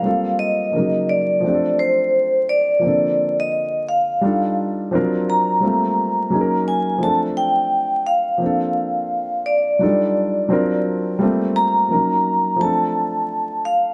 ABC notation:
X:1
M:4/4
L:1/16
Q:"Swing 16ths" 1/4=86
K:Dphr
V:1 name="Vibraphone"
^e2 _e4 d4 c4 d2- | d3 e3 f4 z4 ^a2- | ^a6 _a2 =a2 g4 f2- | f6 d8 z2 |
z2 b6 a6 f2 |]
V:2 name="Grand piano"
[G,A,B,CFA]4 [_D,F,_G,B,EB]4 [F,A,C=D=GA]8 | [D,F,B,CA]8 [G,DEFA]4 [^E,^F,CD^E^A]4 | [G,A,B,CF]4 [_G,B,_DE_AB]4 [F,=A,C=D=A]8 | [F,B,CDA]8 [^F,G,DE=FA]4 [^F,CD^E^A]4 |
[G,A,B,CF]4 [F,_G,B,_DEB]4 [F,A,C=DA]8 |]